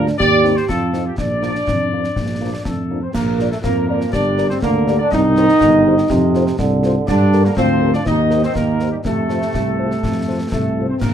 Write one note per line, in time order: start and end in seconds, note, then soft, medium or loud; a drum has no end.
0.00 0.12 D2 medium
0.00 0.16 D4 medium
0.07 snare medium
0.18 0.61 D#2 medium
0.18 0.71 G4 loud
0.18 0.54 D5 loud
0.18 concert bass drum medium
0.18 snare medium
0.43 0.52 D#3 medium
0.43 0.53 G3 medium
0.43 0.52 C4 medium
0.43 0.53 C4 medium
0.43 0.53 D#4 medium
0.43 snare soft
0.56 0.69 C5 medium
0.56 snare soft
0.68 1.10 F2 medium
0.68 1.18 F4 medium
0.68 1.03 A4 medium
0.68 concert bass drum medium
0.68 snare medium
0.92 1.01 D#3 medium
0.92 1.02 F3 medium
0.92 1.02 C4 medium
0.92 1.02 D#4 medium
0.92 snare soft
1.07 1.19 G4 medium
1.18 1.59 A#1 medium
1.18 2.87 D4 medium
1.18 2.61 D5 medium
1.18 concert bass drum medium
1.18 snare medium
1.42 1.51 F3 medium
1.42 1.51 F3 soft
1.42 1.51 A#3 medium
1.42 1.52 A#3 medium
1.42 1.52 D4 medium
1.42 snare medium
1.55 snare soft
1.67 2.08 F2 medium
1.67 concert bass drum medium
1.67 snare medium
1.92 2.00 F3 soft
1.92 2.01 F3 soft
1.92 2.00 A#3 soft
1.92 2.01 A#3 soft
1.92 2.01 D4 soft
2.04 snare soft
2.16 2.57 A#1 medium
2.16 concert bass drum medium
2.16 snare medium
2.41 2.50 F3 soft
2.41 2.50 A#3 soft
2.41 2.50 D4 soft
2.65 3.07 F2 medium
2.65 3.00 A3 medium
2.65 3.00 A4 medium
2.65 concert bass drum medium
2.65 snare medium
2.90 2.99 F3 soft
2.90 2.99 F3 medium
2.90 2.99 A#3 soft
2.90 2.99 A#3 medium
2.90 2.99 D4 soft
3.02 3.14 C4 medium
3.02 3.15 C5 medium
3.13 3.56 A#1 medium
3.13 3.48 A#3 medium
3.13 3.49 A#4 medium
3.13 concert bass drum medium
3.13 snare medium
3.13 crash soft
3.39 3.48 F4 medium
3.39 3.48 A#4 medium
3.39 3.48 D5 medium
3.39 snare medium
3.50 3.57 A3 medium
3.50 3.56 A4 medium
3.50 snare medium
3.63 4.05 F2 medium
3.63 4.15 F3 medium
3.63 3.87 A#3 medium
3.63 3.86 A#4 medium
3.63 concert bass drum medium
3.63 snare medium
3.88 4.11 A#3 medium
3.88 3.97 F4 medium
3.88 4.11 A#4 medium
3.88 3.97 A#4 medium
3.88 3.98 D5 medium
4.01 snare soft
4.12 4.54 G1 medium
4.12 4.61 G3 medium
4.12 4.50 D4 loud
4.12 4.47 D5 medium
4.12 concert bass drum medium
4.12 snare medium
4.37 4.46 G4 medium
4.37 4.46 A#4 medium
4.37 4.46 D5 medium
4.37 snare medium
4.50 4.62 C4 medium
4.50 4.55 C5 medium
4.50 snare medium
4.61 5.04 D2 medium
4.61 5.12 D3 medium
4.61 4.97 A#3 medium
4.61 4.97 A#4 medium
4.61 concert bass drum medium
4.61 snare medium
4.87 4.96 G4 medium
4.87 4.96 A#4 medium
4.87 4.96 D5 medium
4.87 snare medium
4.99 5.12 D4 loud
4.99 5.10 D5 medium
5.11 5.49 C2 medium
5.11 6.09 D#3 medium
5.11 6.56 D#4 loud
5.11 6.55 D#5 loud
5.11 concert bass drum medium
5.11 snare medium
5.36 5.45 G4 medium
5.36 5.45 A#4 medium
5.36 5.45 C5 medium
5.36 snare medium
5.49 snare medium
5.61 6.02 G1 medium
5.61 concert bass drum medium
5.61 snare medium
5.86 5.94 G4 medium
5.86 5.94 A#4 medium
5.86 5.94 C5 medium
5.98 snare medium
6.09 6.51 F2 medium
6.09 6.55 C3 medium
6.09 concert bass drum medium
6.09 snare medium
6.34 6.43 F4 medium
6.34 6.43 A4 medium
6.34 6.43 C5 medium
6.34 snare medium
6.47 snare medium
6.59 7.00 C2 medium
6.59 7.05 D3 medium
6.59 concert bass drum medium
6.59 snare medium
6.83 6.92 F4 medium
6.83 6.92 A4 medium
6.83 6.92 C5 medium
6.83 snare medium
7.08 7.49 G2 loud
7.08 7.54 D3 medium
7.08 7.42 D4 loud
7.08 7.42 D5 loud
7.08 concert bass drum medium
7.08 snare medium
7.08 crash soft
7.33 7.42 G4 medium
7.33 7.42 A#4 medium
7.33 snare medium
7.45 7.51 A#3 loud
7.45 7.57 A#4 medium
7.45 snare soft
7.57 7.98 D2 medium
7.57 8.07 F3 medium
7.57 7.92 C4 loud
7.57 7.91 C5 medium
7.57 concert bass drum medium
7.57 snare medium
7.82 7.91 G4 medium
7.82 7.91 A#4 medium
7.94 8.00 D4 medium
7.94 8.05 D5 medium
7.94 snare soft
8.06 8.47 D#2 medium
8.06 9.04 D#3 medium
8.06 8.41 D#4 loud
8.06 8.41 D#5 medium
8.06 concert bass drum medium
8.06 snare medium
8.31 8.40 G4 medium
8.31 8.40 A#4 medium
8.31 8.40 C5 medium
8.31 snare medium
8.43 8.55 C4 medium
8.43 8.55 C5 medium
8.43 snare medium
8.55 8.96 D#2 medium
8.55 8.92 A#3 medium
8.55 8.89 A#4 medium
8.55 concert bass drum medium
8.55 snare medium
8.80 8.89 G4 medium
8.80 8.89 A#4 medium
8.80 8.89 C5 medium
8.80 snare soft
8.91 8.98 G3 medium
8.91 8.97 G4 medium
9.04 9.46 F2 medium
9.04 10.73 C3 medium
9.04 10.48 A3 medium
9.04 10.48 A4 medium
9.04 concert bass drum medium
9.04 snare medium
9.29 9.38 F4 medium
9.29 9.38 A4 medium
9.29 9.38 C5 medium
9.29 snare medium
9.42 snare medium
9.54 9.95 C2 medium
9.54 concert bass drum medium
9.54 snare medium
9.78 9.87 F4 medium
9.78 9.87 A4 medium
9.78 9.87 C5 soft
9.91 snare soft
10.03 10.44 F2 medium
10.03 concert bass drum medium
10.03 snare medium
10.28 10.37 F4 soft
10.28 10.37 A4 soft
10.28 10.37 C5 medium
10.51 10.93 C2 medium
10.51 10.86 A3 medium
10.51 10.86 A4 medium
10.51 concert bass drum medium
10.51 snare medium
10.77 10.86 F4 medium
10.77 10.85 A4 medium
10.77 10.86 C5 medium
10.89 11.00 C4 medium
10.89 10.94 C5 medium
11.00 11.14 A#1 medium
11.00 11.14 A#3 medium
11.00 11.14 C4 medium
11.00 11.14 A#4 medium
11.00 concert bass drum medium
11.00 snare medium
11.00 crash soft